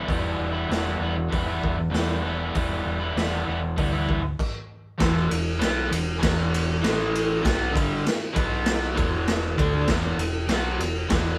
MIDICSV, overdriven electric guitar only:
0, 0, Header, 1, 3, 480
1, 0, Start_track
1, 0, Key_signature, 1, "minor"
1, 0, Tempo, 617284
1, 58, Time_signature, 4, 2, 24, 8
1, 3898, Tempo, 608519
1, 8924, End_track
2, 0, Start_track
2, 0, Title_t, "Overdriven electric guitar"
2, 0, Program_c, 0, 29
2, 40, Note_on_c, 0, 40, 74
2, 50, Note_on_c, 0, 47, 86
2, 56, Note_on_c, 0, 52, 89
2, 63, Note_on_c, 0, 59, 91
2, 64, Note_on_c, 0, 55, 88
2, 74, Note_on_c, 0, 64, 83
2, 401, Note_off_c, 0, 64, 0
2, 404, Note_on_c, 0, 64, 74
2, 417, Note_off_c, 0, 59, 0
2, 420, Note_on_c, 0, 59, 69
2, 424, Note_off_c, 0, 55, 0
2, 427, Note_on_c, 0, 55, 61
2, 430, Note_off_c, 0, 52, 0
2, 433, Note_on_c, 0, 52, 55
2, 528, Note_off_c, 0, 40, 0
2, 529, Note_off_c, 0, 47, 0
2, 531, Note_on_c, 0, 40, 86
2, 535, Note_off_c, 0, 52, 0
2, 539, Note_on_c, 0, 47, 78
2, 539, Note_on_c, 0, 52, 89
2, 545, Note_off_c, 0, 55, 0
2, 548, Note_on_c, 0, 55, 80
2, 550, Note_off_c, 0, 59, 0
2, 553, Note_on_c, 0, 59, 97
2, 555, Note_off_c, 0, 64, 0
2, 559, Note_on_c, 0, 64, 89
2, 763, Note_off_c, 0, 52, 0
2, 767, Note_on_c, 0, 52, 67
2, 777, Note_off_c, 0, 55, 0
2, 780, Note_on_c, 0, 55, 77
2, 787, Note_off_c, 0, 59, 0
2, 790, Note_on_c, 0, 59, 72
2, 795, Note_off_c, 0, 64, 0
2, 798, Note_on_c, 0, 64, 85
2, 900, Note_off_c, 0, 64, 0
2, 906, Note_off_c, 0, 59, 0
2, 907, Note_off_c, 0, 52, 0
2, 907, Note_off_c, 0, 55, 0
2, 1002, Note_on_c, 0, 52, 70
2, 1018, Note_on_c, 0, 55, 73
2, 1022, Note_off_c, 0, 47, 0
2, 1025, Note_on_c, 0, 59, 79
2, 1037, Note_on_c, 0, 64, 68
2, 1138, Note_off_c, 0, 64, 0
2, 1141, Note_on_c, 0, 64, 72
2, 1148, Note_off_c, 0, 59, 0
2, 1151, Note_on_c, 0, 59, 68
2, 1163, Note_off_c, 0, 52, 0
2, 1164, Note_off_c, 0, 55, 0
2, 1166, Note_on_c, 0, 52, 57
2, 1167, Note_on_c, 0, 55, 56
2, 1375, Note_off_c, 0, 64, 0
2, 1378, Note_off_c, 0, 59, 0
2, 1379, Note_off_c, 0, 52, 0
2, 1382, Note_off_c, 0, 55, 0
2, 1476, Note_off_c, 0, 40, 0
2, 1479, Note_on_c, 0, 40, 89
2, 1485, Note_on_c, 0, 47, 87
2, 1496, Note_on_c, 0, 52, 95
2, 1497, Note_on_c, 0, 55, 102
2, 1505, Note_on_c, 0, 59, 92
2, 1512, Note_on_c, 0, 64, 106
2, 1721, Note_off_c, 0, 52, 0
2, 1730, Note_on_c, 0, 52, 82
2, 1738, Note_off_c, 0, 55, 0
2, 1747, Note_on_c, 0, 55, 80
2, 1749, Note_off_c, 0, 59, 0
2, 1756, Note_off_c, 0, 64, 0
2, 1758, Note_on_c, 0, 59, 82
2, 1765, Note_on_c, 0, 64, 93
2, 1837, Note_off_c, 0, 64, 0
2, 1847, Note_off_c, 0, 59, 0
2, 1847, Note_on_c, 0, 64, 71
2, 1856, Note_off_c, 0, 55, 0
2, 1856, Note_on_c, 0, 59, 64
2, 1865, Note_off_c, 0, 52, 0
2, 1866, Note_on_c, 0, 55, 65
2, 1874, Note_on_c, 0, 52, 53
2, 1968, Note_off_c, 0, 40, 0
2, 1975, Note_off_c, 0, 47, 0
2, 1978, Note_on_c, 0, 40, 87
2, 1983, Note_off_c, 0, 55, 0
2, 1984, Note_off_c, 0, 52, 0
2, 1985, Note_on_c, 0, 47, 94
2, 1989, Note_off_c, 0, 59, 0
2, 1992, Note_on_c, 0, 55, 89
2, 1993, Note_on_c, 0, 52, 81
2, 1998, Note_off_c, 0, 64, 0
2, 1998, Note_on_c, 0, 59, 86
2, 2007, Note_on_c, 0, 64, 86
2, 2318, Note_off_c, 0, 64, 0
2, 2326, Note_off_c, 0, 59, 0
2, 2327, Note_on_c, 0, 64, 73
2, 2335, Note_on_c, 0, 59, 61
2, 2337, Note_off_c, 0, 55, 0
2, 2347, Note_on_c, 0, 55, 53
2, 2350, Note_off_c, 0, 52, 0
2, 2359, Note_on_c, 0, 52, 54
2, 2440, Note_off_c, 0, 40, 0
2, 2448, Note_off_c, 0, 47, 0
2, 2449, Note_on_c, 0, 40, 83
2, 2453, Note_off_c, 0, 52, 0
2, 2457, Note_off_c, 0, 55, 0
2, 2457, Note_on_c, 0, 47, 85
2, 2462, Note_off_c, 0, 59, 0
2, 2463, Note_on_c, 0, 52, 85
2, 2466, Note_off_c, 0, 64, 0
2, 2466, Note_on_c, 0, 55, 94
2, 2471, Note_on_c, 0, 59, 85
2, 2475, Note_on_c, 0, 64, 94
2, 2670, Note_off_c, 0, 52, 0
2, 2680, Note_on_c, 0, 52, 76
2, 2685, Note_off_c, 0, 55, 0
2, 2688, Note_off_c, 0, 59, 0
2, 2695, Note_on_c, 0, 55, 67
2, 2697, Note_on_c, 0, 59, 80
2, 2701, Note_off_c, 0, 64, 0
2, 2710, Note_on_c, 0, 64, 75
2, 2797, Note_off_c, 0, 64, 0
2, 2805, Note_off_c, 0, 59, 0
2, 2808, Note_off_c, 0, 55, 0
2, 2809, Note_off_c, 0, 52, 0
2, 2929, Note_on_c, 0, 52, 67
2, 2933, Note_on_c, 0, 55, 75
2, 2936, Note_off_c, 0, 40, 0
2, 2939, Note_off_c, 0, 47, 0
2, 2945, Note_on_c, 0, 59, 79
2, 2955, Note_on_c, 0, 64, 76
2, 3033, Note_off_c, 0, 64, 0
2, 3043, Note_on_c, 0, 64, 66
2, 3044, Note_off_c, 0, 59, 0
2, 3053, Note_on_c, 0, 59, 61
2, 3054, Note_off_c, 0, 55, 0
2, 3063, Note_off_c, 0, 52, 0
2, 3063, Note_on_c, 0, 55, 61
2, 3073, Note_on_c, 0, 52, 59
2, 3272, Note_off_c, 0, 64, 0
2, 3274, Note_off_c, 0, 55, 0
2, 3275, Note_off_c, 0, 52, 0
2, 3277, Note_off_c, 0, 59, 0
2, 3872, Note_on_c, 0, 40, 107
2, 3878, Note_on_c, 0, 52, 112
2, 3880, Note_on_c, 0, 47, 98
2, 4106, Note_off_c, 0, 40, 0
2, 4108, Note_off_c, 0, 47, 0
2, 4116, Note_on_c, 0, 40, 75
2, 4117, Note_on_c, 0, 47, 75
2, 4122, Note_off_c, 0, 52, 0
2, 4320, Note_off_c, 0, 40, 0
2, 4321, Note_off_c, 0, 47, 0
2, 4354, Note_on_c, 0, 47, 91
2, 4356, Note_on_c, 0, 59, 93
2, 4358, Note_on_c, 0, 54, 94
2, 4589, Note_off_c, 0, 47, 0
2, 4597, Note_on_c, 0, 40, 67
2, 4598, Note_on_c, 0, 47, 81
2, 4601, Note_off_c, 0, 59, 0
2, 4602, Note_off_c, 0, 54, 0
2, 4801, Note_off_c, 0, 40, 0
2, 4802, Note_off_c, 0, 47, 0
2, 4823, Note_on_c, 0, 40, 87
2, 4828, Note_on_c, 0, 47, 98
2, 4836, Note_on_c, 0, 52, 111
2, 5311, Note_off_c, 0, 52, 0
2, 5315, Note_off_c, 0, 40, 0
2, 5317, Note_off_c, 0, 47, 0
2, 5320, Note_on_c, 0, 52, 110
2, 5323, Note_on_c, 0, 45, 96
2, 5328, Note_on_c, 0, 57, 107
2, 5791, Note_off_c, 0, 45, 0
2, 5795, Note_on_c, 0, 47, 95
2, 5800, Note_off_c, 0, 52, 0
2, 5803, Note_on_c, 0, 54, 98
2, 5807, Note_off_c, 0, 57, 0
2, 5812, Note_on_c, 0, 59, 107
2, 6033, Note_off_c, 0, 47, 0
2, 6036, Note_on_c, 0, 43, 89
2, 6036, Note_on_c, 0, 50, 100
2, 6044, Note_off_c, 0, 54, 0
2, 6047, Note_on_c, 0, 55, 104
2, 6049, Note_off_c, 0, 59, 0
2, 6271, Note_off_c, 0, 43, 0
2, 6281, Note_off_c, 0, 50, 0
2, 6286, Note_off_c, 0, 55, 0
2, 6518, Note_on_c, 0, 47, 81
2, 6525, Note_on_c, 0, 54, 102
2, 6533, Note_on_c, 0, 59, 96
2, 6993, Note_off_c, 0, 47, 0
2, 7002, Note_on_c, 0, 40, 80
2, 7002, Note_on_c, 0, 47, 91
2, 7004, Note_off_c, 0, 54, 0
2, 7008, Note_off_c, 0, 59, 0
2, 7010, Note_on_c, 0, 52, 114
2, 7482, Note_off_c, 0, 40, 0
2, 7482, Note_off_c, 0, 47, 0
2, 7486, Note_off_c, 0, 52, 0
2, 7498, Note_on_c, 0, 50, 107
2, 7502, Note_on_c, 0, 62, 117
2, 7505, Note_on_c, 0, 57, 107
2, 7730, Note_off_c, 0, 50, 0
2, 7732, Note_off_c, 0, 62, 0
2, 7734, Note_off_c, 0, 57, 0
2, 7737, Note_on_c, 0, 40, 104
2, 7745, Note_on_c, 0, 47, 108
2, 7756, Note_on_c, 0, 52, 121
2, 7966, Note_off_c, 0, 40, 0
2, 7970, Note_off_c, 0, 47, 0
2, 7976, Note_on_c, 0, 40, 62
2, 7979, Note_off_c, 0, 52, 0
2, 7979, Note_on_c, 0, 47, 85
2, 8168, Note_off_c, 0, 40, 0
2, 8170, Note_off_c, 0, 47, 0
2, 8215, Note_on_c, 0, 47, 84
2, 8224, Note_on_c, 0, 54, 107
2, 8233, Note_on_c, 0, 59, 96
2, 8449, Note_off_c, 0, 47, 0
2, 8453, Note_off_c, 0, 54, 0
2, 8458, Note_off_c, 0, 59, 0
2, 8463, Note_on_c, 0, 40, 71
2, 8471, Note_on_c, 0, 47, 76
2, 8652, Note_off_c, 0, 40, 0
2, 8656, Note_off_c, 0, 47, 0
2, 8690, Note_on_c, 0, 40, 97
2, 8698, Note_on_c, 0, 47, 89
2, 8706, Note_on_c, 0, 52, 102
2, 8924, Note_off_c, 0, 40, 0
2, 8924, Note_off_c, 0, 47, 0
2, 8924, Note_off_c, 0, 52, 0
2, 8924, End_track
3, 0, Start_track
3, 0, Title_t, "Muted overdriven electric guitar strokes"
3, 904, Note_on_c, 9, 29, 51
3, 981, Note_off_c, 9, 29, 0
3, 1384, Note_on_c, 9, 29, 47
3, 1462, Note_off_c, 9, 29, 0
3, 2806, Note_on_c, 9, 29, 54
3, 2884, Note_off_c, 9, 29, 0
3, 3282, Note_on_c, 9, 29, 53
3, 3359, Note_off_c, 9, 29, 0
3, 6274, Note_on_c, 9, 29, 57
3, 6353, Note_off_c, 9, 29, 0
3, 8924, End_track
0, 0, End_of_file